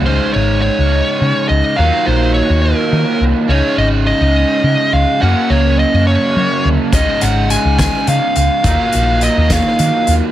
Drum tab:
HH |------|------|------|------|
SD |------|------|------|------|
BD |------|------|------|------|

HH |xxxxxx|xxxxxx|
SD |---o--|---o--|
BD |o--o--|o--o--|